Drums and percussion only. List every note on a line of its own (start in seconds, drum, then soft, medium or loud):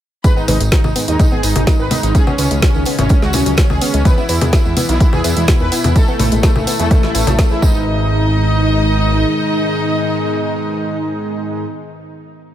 0.24 kick loud
0.24 closed hi-hat soft
0.24 tambourine medium
0.37 tambourine soft
0.48 open hi-hat loud
0.48 tambourine medium
0.48 low conga medium
0.61 closed hi-hat soft
0.61 tambourine soft
0.72 kick loud
0.72 snare loud
0.72 closed hi-hat soft
0.84 tambourine soft
0.84 low conga medium
0.96 open hi-hat medium
0.96 tambourine medium
1.08 closed hi-hat soft
1.08 tambourine soft
1.20 kick loud
1.20 closed hi-hat soft
1.20 tambourine medium
1.20 low conga medium
1.32 tambourine soft
1.43 open hi-hat loud
1.43 tambourine loud
1.56 closed hi-hat soft
1.56 low conga medium
1.67 kick loud
1.67 snare loud
1.67 closed hi-hat soft
1.67 tambourine medium
1.80 tambourine soft
1.91 open hi-hat medium
1.91 tambourine medium
1.91 low conga medium
2.03 closed hi-hat soft
2.03 tambourine soft
2.15 kick loud
2.15 closed hi-hat soft
2.15 tambourine medium
2.27 tambourine soft
2.27 low conga medium
2.38 open hi-hat loud
2.38 tambourine medium
2.51 closed hi-hat soft
2.51 tambourine soft
2.62 kick loud
2.62 snare loud
2.62 closed hi-hat soft
2.62 tambourine soft
2.62 low conga medium
2.74 tambourine soft
2.85 open hi-hat medium
2.85 tambourine medium
2.99 closed hi-hat soft
2.99 tambourine soft
2.99 low conga medium
3.09 kick loud
3.09 closed hi-hat soft
3.09 tambourine medium
3.22 snare soft
3.22 tambourine soft
3.33 open hi-hat loud
3.33 tambourine loud
3.33 low conga medium
3.46 closed hi-hat soft
3.46 tambourine soft
3.57 kick loud
3.57 snare loud
3.57 closed hi-hat soft
3.57 tambourine medium
3.70 tambourine soft
3.70 low conga medium
3.81 open hi-hat loud
3.81 tambourine loud
3.94 closed hi-hat soft
3.94 tambourine soft
4.05 kick loud
4.05 closed hi-hat soft
4.05 tambourine medium
4.05 low conga medium
4.18 tambourine soft
4.29 open hi-hat loud
4.29 tambourine medium
4.41 closed hi-hat soft
4.41 tambourine soft
4.41 low conga medium
4.53 kick loud
4.53 snare loud
4.53 closed hi-hat soft
4.53 tambourine medium
4.65 tambourine soft
4.77 open hi-hat loud
4.77 tambourine loud
4.77 low conga medium
4.89 closed hi-hat soft
4.89 tambourine soft
5.00 kick loud
5.00 closed hi-hat soft
5.00 tambourine medium
5.13 tambourine soft
5.13 low conga medium
5.24 open hi-hat loud
5.24 tambourine loud
5.37 closed hi-hat soft
5.37 tambourine soft
5.48 kick loud
5.48 snare loud
5.48 closed hi-hat soft
5.48 tambourine medium
5.48 low conga medium
5.60 tambourine soft
5.72 open hi-hat loud
5.72 tambourine medium
5.84 closed hi-hat soft
5.84 tambourine soft
5.84 low conga medium
5.96 kick loud
5.96 closed hi-hat soft
5.96 tambourine medium
6.08 tambourine soft
6.19 open hi-hat loud
6.19 tambourine medium
6.19 low conga medium
6.32 closed hi-hat soft
6.32 tambourine soft
6.43 kick loud
6.43 snare loud
6.43 closed hi-hat soft
6.43 tambourine medium
6.56 tambourine soft
6.56 low conga loud
6.67 open hi-hat medium
6.67 tambourine loud
6.80 closed hi-hat soft
6.80 tambourine soft
6.91 kick loud
6.91 closed hi-hat soft
6.91 tambourine soft
6.91 low conga medium
7.03 snare soft
7.03 tambourine soft
7.15 open hi-hat loud
7.15 tambourine loud
7.27 closed hi-hat soft
7.27 tambourine soft
7.27 low conga loud
7.39 kick loud
7.39 snare loud
7.39 closed hi-hat soft
7.39 tambourine medium
7.51 tambourine soft
7.62 kick loud
7.62 tambourine medium
7.75 tambourine soft